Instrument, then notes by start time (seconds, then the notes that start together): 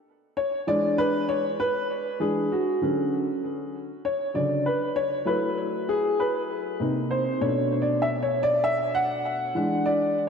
grand piano
0.37 C#5
0.67 E3 G#3 D4 D5
0.98 B4
1.29 C#5
1.60 B4
2.20 E3 G#3 D4 G#4
2.52 F#4
2.81 D3 F#3 C#4
4.05 C#5
4.34 C#3 D3 F#3 D5
4.66 B4
4.96 C#5
5.25 F#3 A3 E4 B4
5.89 G#4
6.20 B4
6.80 C3 A#3 D#4
7.11 C5
7.41 B2 A3 D4 C#5
7.82 D5
8.02 E5
8.23 C#5
8.43 D5
8.64 E5
8.95 F#5
9.55 E3 G#3 D4
9.86 D5